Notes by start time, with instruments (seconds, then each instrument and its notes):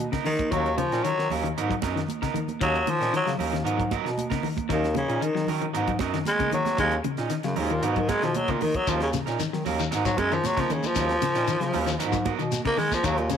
0.00 closed hi-hat
0.12 clean electric guitar C#3 B3 D#4 A#4, kick, snare, closed hi-hat, high conga
0.25 clean electric guitar D#3, baritone saxophone D#3, open hi-hat, low conga
0.39 kick, closed hi-hat, high conga
0.51 bass clarinet D#2, clean electric guitar D#3 F#3 C#4 D#4 A#4, baritone saxophone F#3, kick, closed hi-hat
0.66 closed hi-hat
0.77 clean electric guitar C#3, baritone saxophone F3, closed hi-hat, high conga, low conga
0.92 bass clarinet A#2, clean electric guitar C#4 D#4 A#4, snare, closed hi-hat
1.03 clean electric guitar D#3, baritone saxophone F#3, closed hi-hat, high conga
1.17 bass clarinet D#3, snare
1.30 bass clarinet D#2, clean electric guitar F#3 C#4 D#4 A#4, open hi-hat, low conga
1.44 clean electric guitar D#3, closed hi-hat
1.56 bass clarinet G#2, clean electric guitar F#3 B3 D#4 A#4, closed hi-hat, high conga
1.69 clean electric guitar F#3, kick, closed hi-hat
1.82 bass clarinet F#2, clean electric guitar F#3 B3 D#4 A#4, kick, snare, closed hi-hat, high conga
1.96 clean electric guitar D#3, snare, closed hi-hat
2.08 closed hi-hat, high conga
2.22 clean electric guitar C#3 B3 D#4 A#4, kick, snare, closed hi-hat
2.34 clean electric guitar D#3, baritone saxophone D#3, closed hi-hat, high conga, low conga
2.48 closed hi-hat, high conga
2.61 bass clarinet D#2, clean electric guitar D#3 F#3 C#4 D#4 A#4, baritone saxophone F#3, kick, closed hi-hat
2.75 closed hi-hat
2.87 clean electric guitar D#3, baritone saxophone F3, closed hi-hat, high conga
3.00 bass clarinet A#2, clean electric guitar C#4 D#4 A#4, snare, closed hi-hat
3.13 clean electric guitar D#3, baritone saxophone F#3, closed hi-hat, high conga
3.26 bass clarinet C#3, clean electric guitar F#3, snare, closed hi-hat
3.38 bass clarinet D#2, clean electric guitar F#3 C#4 D#4 A#4, open hi-hat, low conga
3.53 clean electric guitar D#3, snare, closed hi-hat
3.64 bass clarinet G#2, clean electric guitar F#3 B3 D#4 A#4, closed hi-hat, high conga
3.78 clean electric guitar F#3, kick, closed hi-hat
3.91 clean electric guitar F#3 B3 D#4 A#4, kick, closed hi-hat, high conga
4.04 bass clarinet B2, muted clean electric guitar stroke, snare, closed hi-hat
4.18 closed hi-hat, high conga
4.30 clean electric guitar C#3 B3 D#4 A#4, kick, snare, closed hi-hat, high conga
4.43 clean electric guitar D#3, open hi-hat, high conga, low conga
4.57 kick, closed hi-hat, high conga
4.69 bass clarinet D#2, clean electric guitar D#3 F#3 C#4 D#4 A#4, baritone saxophone D#3, kick, snare, closed hi-hat
4.84 snare, closed hi-hat
4.95 clean electric guitar C#3, baritone saxophone C#3, closed hi-hat, high conga, low conga
5.08 bass clarinet A#2, clean electric guitar C#4 D#4, muted clean electric guitar stroke, closed hi-hat
5.21 clean electric guitar D#3, baritone saxophone D#3, closed hi-hat, high conga
5.35 bass clarinet D#3, clean electric guitar F#3, snare
5.47 bass clarinet D#3, clean electric guitar F#3 C#4 D#4 A#4, open hi-hat, low conga
5.62 clean electric guitar D#3, closed hi-hat
5.74 bass clarinet G#2, clean electric guitar F#3 B3 D#4 A#4, closed hi-hat, high conga
5.87 clean electric guitar F#3, kick, closed hi-hat
5.99 bass clarinet F#2, clean electric guitar F#3 B3 D#4 A#4, kick, snare, closed hi-hat, high conga
6.14 clean electric guitar D#3, snare, closed hi-hat
6.25 baritone saxophone G#3, snare, closed hi-hat, high conga
6.39 clean electric guitar C#3 B3 D#4 A#4, kick, closed hi-hat, high conga
6.51 clean electric guitar D#3, baritone saxophone F#3, closed hi-hat, high conga, low conga
6.65 snare, closed hi-hat, high conga
6.78 bass clarinet D#2, clean electric guitar D#3 F#3 C#4 D#4 A#4, baritone saxophone G#3, kick, closed hi-hat, high conga
6.91 closed hi-hat
7.04 clean electric guitar C#3, closed hi-hat, high conga, low conga
7.17 bass clarinet A#2, clean electric guitar C#4 D#4, snare, closed hi-hat
7.30 clean electric guitar D#3, snare, closed hi-hat, high conga
7.43 baritone saxophone F#2, bass clarinet C#3, clean electric guitar F#3, snare, closed hi-hat
7.56 bass clarinet D#2, baritone saxophone G#2, clean electric guitar F#3 C#4 D#4 A#4, open hi-hat, low conga
7.70 baritone saxophone A#2, clean electric guitar D#3, closed hi-hat
7.82 bass clarinet G#2, baritone saxophone B2, clean electric guitar F#3 B3 D#4 A#4, closed hi-hat
7.96 baritone saxophone D#3, clean electric guitar F#3, kick, closed hi-hat
8.08 clean electric guitar F#3 B3 A#4, baritone saxophone G#3, muted clean electric guitar stroke, kick, snare, closed hi-hat, high conga
8.22 bass clarinet B2, clean electric guitar D#3, baritone saxophone F3, snare, closed hi-hat
8.35 baritone saxophone F#3, closed hi-hat, high conga
8.48 baritone saxophone A#2, clean electric guitar C#3 B3 D#4 A#4, kick, closed hi-hat, high conga
8.61 baritone saxophone D#3, clean electric guitar D#3, open hi-hat, high conga, low conga
8.74 baritone saxophone F#3, kick, closed hi-hat, high conga
8.87 bass clarinet D#2, clean electric guitar D#3 F#3 C#4 D#4 A#4, baritone saxophone F3, kick, closed hi-hat, shekere
9.00 baritone saxophone C#3, snare, closed hi-hat
9.13 clean electric guitar C#3, snare, closed hi-hat, high conga, low conga, shekere
9.26 bass clarinet A#2, clean electric guitar C#4 D#4 A#4, snare, closed hi-hat, shekere
9.40 clean electric guitar D#3, snare, closed hi-hat, high conga, low conga, shekere
9.53 bass clarinet D#3, clean electric guitar F#3, snare
9.65 bass clarinet D#2, clean electric guitar F#3 C#4 D#4 A#4, open hi-hat, low conga, shekere
9.79 clean electric guitar D#3, closed hi-hat, shekere
9.91 bass clarinet G#2, clean electric guitar F#3 B3 D#4 A#4, snare, closed hi-hat, high conga, shekere
10.05 baritone saxophone F#3, clean electric guitar F#3, kick, closed hi-hat, shekere
10.17 bass clarinet F#2, clean electric guitar F#3 B3 A#4, baritone saxophone G#3, kick, closed hi-hat, high conga
10.32 clean electric guitar D#3, baritone saxophone F3, closed hi-hat, shekere
10.44 baritone saxophone F#3, snare, closed hi-hat, high conga, shekere
10.56 clean electric guitar C#3 B3 D#4 A#4, baritone saxophone F3, kick, snare, closed hi-hat, high conga
10.70 baritone saxophone C#3, clean electric guitar D#3, closed hi-hat, high conga, low conga, shekere
10.83 baritone saxophone F3, closed hi-hat, high conga, shekere
10.95 bass clarinet D#2, clean electric guitar D#3 F#3 C#4 D#4 A#4, kick, snare, closed hi-hat, high conga, shekere
11.09 snare, closed hi-hat
11.21 clean electric guitar C#3, snare, closed hi-hat, high conga, low conga, shekere
11.35 bass clarinet A#2, clean electric guitar C#4 D#4 A#4, snare, closed hi-hat, shekere
11.47 clean electric guitar D#3, closed hi-hat, high conga, low conga, shekere
11.60 bass clarinet C#3, clean electric guitar F#3, snare, closed hi-hat
11.72 bass clarinet D#2, clean electric guitar F#3 C#4 D#4 A#4, open hi-hat, low conga, shekere
11.86 clean electric guitar D#3, snare, closed hi-hat, shekere
11.99 bass clarinet G#2, clean electric guitar F#3 B3 D#4 A#4, closed hi-hat, high conga, shekere
12.12 clean electric guitar F#3, kick, closed hi-hat, shekere
12.25 clean electric guitar F#3 B3 A#4, kick, closed hi-hat, high conga
12.39 bass clarinet B2, clean electric guitar D#3, closed hi-hat, shekere
12.52 snare, closed hi-hat, high conga, shekere
12.65 clean electric guitar C#3 B3 D#4 A#4, baritone saxophone A#3, kick, closed hi-hat
12.77 clean electric guitar D#3, baritone saxophone G#3, open hi-hat, low conga, shekere
12.91 baritone saxophone F3, kick, snare, closed hi-hat, high conga, shekere
13.03 bass clarinet D#2, clean electric guitar D#3 F#3 D#4 A#4, baritone saxophone F#3, muted clean electric guitar stroke, kick, closed hi-hat, shekere
13.18 baritone saxophone A#2, closed hi-hat
13.30 baritone saxophone C#3, clean electric guitar C#3, closed hi-hat, high conga, shekere